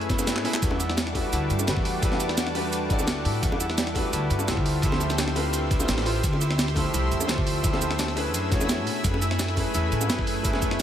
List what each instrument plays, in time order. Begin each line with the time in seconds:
Already playing: upright bass F#2, analog synth pad A3 G#5 B5 E6, harp C#4 B4
0.01 closed hi-hat
0.09 harp E4, kick, snare, closed hi-hat, ride, shaker
0.18 grand piano A3 C#4 E4 G#4 B4, snare, ride, high bongo, shaker
0.27 snare, closed hi-hat, ride, shaker
0.36 snare, clap, ride
0.44 upright bass B2, grand piano A3 C#4 E4 G#4 B4, harp E4, snare, open hi-hat, ride
0.54 snare, clap, ride, shaker
0.61 upright bass E2, analog synth pad G3 F#5 A5 D6, grand piano A3 D4 F#4 G4 B4, kick, closed hi-hat, ride, shaker
0.70 ride, high bongo
0.80 harp E4, closed hi-hat, ride, shaker
0.89 snare
0.97 snare, closed hi-hat, ride, shaker
1.07 snare, ride
1.13 grand piano A3 D4 F#4 G4 B4, harp E4, kick, open hi-hat, ride, high bongo
1.24 ride
1.32 upright bass D2, harp E4, closed hi-hat, ride, shaker
1.50 upright bass G2, closed hi-hat, ride, shaker
1.59 ride, high bongo, shaker
1.67 upright bass E2, grand piano A3 D4 F#4 G4 B4, harp E4, snare, closed hi-hat, ride, shaker
1.77 kick
1.85 open hi-hat, ride
2.01 grand piano A3 D4 F#4 G4 B4, harp E4, kick, closed hi-hat, ride, shaker
2.11 snare, high bongo
2.20 closed hi-hat, ride, shaker
2.29 snare
2.37 harp D4, snare, closed hi-hat, ride, shaker
2.46 snare
2.54 grand piano A3 D4 F#4 G4 B4, harp B4, open hi-hat, ride, high bongo
2.73 closed hi-hat, ride, shaker
2.89 grand piano A3 D4 F#4 G4 D5, harp E4, kick, closed hi-hat, ride, shaker
2.99 upright bass D2, snare, high bongo, shaker
3.07 snare, closed hi-hat, ride, shaker
3.25 upright bass A2, harp E4, open hi-hat, ride
3.35 ride
3.42 upright bass E2, grand piano A3 D4 F#4 G4 B4, kick, closed hi-hat, ride, shaker
3.52 ride, high bongo
3.60 harp E4, closed hi-hat, ride, shaker
3.69 snare
3.77 snare, closed hi-hat, ride, shaker
3.87 snare, ride
3.94 grand piano A3 D4 F#4 G4 B4, harp E4, kick, open hi-hat, ride, high bongo
4.04 ride
4.13 upright bass D2, harp E4, closed hi-hat, ride, shaker
4.30 upright bass G2, closed hi-hat, ride, shaker
4.39 ride, high bongo, shaker
4.47 upright bass D2, grand piano A3 E4 F4 G4 C5, harp E4, snare, closed hi-hat, ride, shaker
4.57 kick
4.66 analog synth pad G4 C6 E6, open hi-hat, ride
4.82 grand piano F3 A3 E4 G4 C5, harp E4, kick, closed hi-hat, ride, shaker
4.92 snare, high bongo
5.00 closed hi-hat, ride, shaker
5.10 snare, shaker
5.18 harp D4, snare, closed hi-hat, ride, shaker
5.27 snare
5.35 grand piano A3 C4 E4 F4 G4, harp B4, open hi-hat, ride, high bongo
5.53 closed hi-hat, ride, shaker
5.71 harp E4, kick, closed hi-hat, ride, shaker
5.79 upright bass C2, grand piano A3 E4 F4 G4 C5, snare, high bongo, shaker
5.88 upright bass A1, snare, closed hi-hat, ride, shaker
5.97 snare, ride
6.02 grand piano A3 E4, snare, ride
6.05 grand piano F4 G4 C5, harp F4, open hi-hat, ride
6.16 ride
6.22 upright bass D2, grand piano A3 E4 F4 G4 C5, kick, closed hi-hat, ride, shaker
6.32 ride, high bongo
6.41 harp E4, closed hi-hat, ride, shaker
6.50 snare
6.58 snare, closed hi-hat, ride, shaker
6.67 snare, ride
6.74 grand piano F3 A3 E4 G4 C5, harp E4, kick, open hi-hat, ride, high bongo
6.86 ride
6.94 upright bass C2, harp E4, closed hi-hat, ride, shaker
7.11 upright bass F2, closed hi-hat, ride, shaker
7.20 ride, high bongo, shaker
7.28 upright bass D2, grand piano F3 A3 G4 E5, harp F4, snare, ride
7.29 grand piano C5, snare, closed hi-hat, shaker
7.38 kick
7.47 open hi-hat, ride
7.62 grand piano F3 A3 G4 C5 E5, harp E4, kick, closed hi-hat, ride, shaker
7.73 snare, high bongo
7.82 closed hi-hat, ride, shaker
7.90 snare
7.99 harp D4, snare, closed hi-hat, ride, shaker
8.08 snare
8.16 grand piano A3 C#4 E4 G#4 B4, harp B4, open hi-hat, ride, high bongo
8.34 upright bass F#2, analog synth pad A3 G#5 B5, closed hi-hat, ride, shaker
8.50 grand piano A3 C#4 E4 G#4 C#5, harp F#4, kick, closed hi-hat, ride, shaker
8.61 upright bass E2, snare, high bongo, shaker
8.69 snare, closed hi-hat, ride, shaker
8.87 upright bass B2, harp E4, open hi-hat, ride
8.96 ride
9.03 upright bass F#2, grand piano A3 C#4 E4 G#4 B4, kick, closed hi-hat, ride, shaker
9.13 ride, high bongo
9.22 harp E4, closed hi-hat, ride, shaker
9.30 snare
9.39 snare, closed hi-hat, ride, shaker
9.48 snare, ride
9.55 grand piano A3 C#4 E4 G#4 B4, harp E4, kick, open hi-hat, ride, high bongo
9.67 ride
9.74 upright bass E2, harp E4, closed hi-hat, ride, shaker
9.92 upright bass A2, closed hi-hat, ride, shaker
10.01 ride, high bongo, shaker
10.09 upright bass F#2, grand piano A3 C#4 E4 G#4 B4, harp E4, snare, closed hi-hat, ride, shaker
10.19 kick
10.27 open hi-hat, ride
10.43 grand piano A3 C#4 E4 G#4 B4, harp E4, kick, closed hi-hat, ride, shaker
10.53 snare, high bongo
10.62 kick, closed hi-hat, ride, shaker
10.71 snare